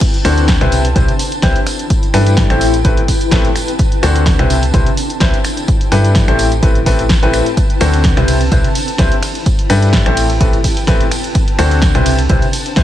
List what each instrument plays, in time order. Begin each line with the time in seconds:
Already playing: ambient pad C4 A5
0.01 kick, closed hi-hat, crash, tambourine
0.12 ambient pad C5, closed hi-hat, tambourine
0.25 fm bass D2, grand piano D3 C4 D4 F#4 A4 C5, finger snap, open hi-hat, tambourine
0.38 closed hi-hat, tambourine
0.48 kick, snare, closed hi-hat, tambourine
0.61 fm bass C2, grand piano C3 C4 E4 G4 B4 C5, finger snap, closed hi-hat
0.72 ambient pad E4, open hi-hat, tambourine
0.84 closed hi-hat, tambourine
0.96 fm bass C2, grand piano C3 C4 E4 G4 B4 C5, kick, closed hi-hat, tambourine
1.08 closed hi-hat, tambourine
1.15 ambient pad G5
1.19 open hi-hat, tambourine
1.32 closed hi-hat, tambourine
1.42 fm bass C2, grand piano C4 E4 G4 B4 C5, kick, snare, closed hi-hat, tambourine
1.55 closed hi-hat, tambourine
1.67 finger snap, open hi-hat, tambourine
1.79 ambient pad B4, closed hi-hat, tambourine
1.90 kick, closed hi-hat, tambourine
2.03 closed hi-hat, tambourine
2.10 ambient pad A5
2.14 fm bass G2, grand piano G3 D4 E4 G4 A4 B4, finger snap, open hi-hat, tambourine
2.27 closed hi-hat, tambourine
2.37 kick, snare, closed hi-hat, tambourine
2.50 fm bass A1, grand piano A2 C4 E4 G4 A4 C5, finger snap, closed hi-hat, tambourine
2.61 ambient pad C4, open hi-hat, tambourine
2.73 closed hi-hat, tambourine
2.85 fm bass A1, grand piano A2 C4 E4 G4 A4 B4, kick, closed hi-hat, tambourine
2.97 closed hi-hat, tambourine
3.08 kick, open hi-hat, tambourine
3.21 closed hi-hat, tambourine
3.31 fm bass A1, grand piano A2 C4 E4 G4 A4 B4, kick, snare, closed hi-hat, tambourine
3.44 closed hi-hat, tambourine
3.56 finger snap, open hi-hat, tambourine
3.68 closed hi-hat, tambourine
3.79 kick, closed hi-hat, tambourine
3.92 closed hi-hat, tambourine
4.03 fm bass D2, grand piano D3 C4 D4 F#4 A4 C5, finger snap, open hi-hat, tambourine
4.16 closed hi-hat, tambourine
4.26 kick, snare, closed hi-hat, tambourine
4.38 fm bass C2, grand piano C3 C4 E4 G4 B4 C5, finger snap, closed hi-hat, tambourine
4.50 ambient pad E4, open hi-hat, tambourine
4.63 ambient pad G5, closed hi-hat, tambourine
4.74 fm bass C2, grand piano C3 C4 E4 G4 B4 C5, kick, closed hi-hat, tambourine
4.86 closed hi-hat, tambourine
4.97 open hi-hat, tambourine
5.09 closed hi-hat, tambourine
5.20 fm bass C2, grand piano C4 E4 G4 B4 C5, kick, snare, closed hi-hat, tambourine
5.34 closed hi-hat, tambourine
5.44 finger snap, open hi-hat, tambourine
5.57 closed hi-hat, tambourine
5.64 ambient pad B4
5.68 kick, closed hi-hat, tambourine
5.81 closed hi-hat, tambourine
5.87 ambient pad A5
5.92 fm bass G2, grand piano G3 D4 E4 G4 A4 B4, finger snap, open hi-hat, tambourine
6.05 closed hi-hat, tambourine
6.15 kick, snare, closed hi-hat, tambourine
6.28 fm bass A1, grand piano A2 C4 E4 G4 A4 C5, finger snap, closed hi-hat, tambourine
6.39 ambient pad C4, open hi-hat, tambourine
6.52 closed hi-hat, tambourine
6.63 fm bass A1, grand piano A2 C4 E4 G4 A4 B4, kick, closed hi-hat, tambourine
6.75 closed hi-hat, tambourine
6.86 fm bass A1, grand piano A2 C4 E4 G4 A4 B4, kick, open hi-hat, tambourine
6.99 closed hi-hat, tambourine
7.09 kick, snare, closed hi-hat, tambourine
7.23 fm bass A1, grand piano A2 C4 E4 G4 A4 B4, closed hi-hat, tambourine
7.33 finger snap, open hi-hat, tambourine
7.46 closed hi-hat, tambourine
7.57 kick, closed hi-hat, tambourine
7.70 closed hi-hat, tambourine
7.81 fm bass D2, grand piano D3 C4 D4 F#4 A4 C5, finger snap, open hi-hat, ride, tambourine
7.94 closed hi-hat, tambourine
8.04 kick, snare, closed hi-hat, tambourine
8.17 fm bass C2, grand piano C3 C4 E4 G4 B4 C5, finger snap, closed hi-hat, tambourine
8.28 ambient pad E4, open hi-hat, ride, tambourine
8.40 closed hi-hat, tambourine
8.52 fm bass C2, grand piano C3 C4 E4 G4 B4 C5, kick, closed hi-hat, tambourine
8.64 closed hi-hat, tambourine
8.71 ambient pad G5
8.75 open hi-hat, ride, tambourine
8.88 closed hi-hat, tambourine
8.98 fm bass C2, grand piano C4 E4 G4 B4 C5, kick, snare, closed hi-hat, tambourine
9.12 closed hi-hat, tambourine
9.23 finger snap, open hi-hat, ride, tambourine
9.35 closed hi-hat, tambourine
9.46 kick, closed hi-hat, tambourine
9.59 closed hi-hat, tambourine
9.64 ambient pad B4 A5
9.70 fm bass G2, grand piano G3 D4 E4 G4 A4 B4, finger snap, open hi-hat, ride, tambourine
9.82 closed hi-hat, tambourine
9.93 kick, snare, closed hi-hat, tambourine
10.06 fm bass A1, grand piano A2 C4 E4 G4 A4 C5, finger snap, closed hi-hat, tambourine
10.17 ambient pad C4, open hi-hat, ride, tambourine
10.30 closed hi-hat, tambourine
10.41 fm bass A1, grand piano A2 C4 E4 G4 A4 B4, kick, closed hi-hat, tambourine
10.53 closed hi-hat, tambourine
10.64 kick, open hi-hat, ride, tambourine
10.77 closed hi-hat, tambourine
10.87 fm bass A1, grand piano A2 C4 E4 G4 A4 B4, kick, snare, closed hi-hat, tambourine
11.00 closed hi-hat, tambourine
11.11 finger snap, open hi-hat, ride, tambourine
11.24 closed hi-hat, tambourine
11.35 kick, closed hi-hat, tambourine
11.48 closed hi-hat, tambourine
11.59 fm bass D2, grand piano D3 C4 D4 F#4 A4 C5, finger snap, open hi-hat, ride, tambourine
11.71 closed hi-hat, tambourine
11.82 kick, snare, closed hi-hat, tambourine
11.95 fm bass C2, grand piano C3 C4 E4 G4 B4 C5, finger snap, closed hi-hat, tambourine
12.06 ambient pad E4, open hi-hat, ride, tambourine
12.18 closed hi-hat, tambourine
12.29 fm bass C2, grand piano C3 C4 E4 G4 B4 C5, kick, closed hi-hat, tambourine
12.42 ambient pad G5, closed hi-hat, tambourine
12.53 open hi-hat, ride, tambourine
12.65 closed hi-hat, tambourine
12.76 fm bass C2, grand piano C4 E4 G4 B4 C5, kick, snare, closed hi-hat, tambourine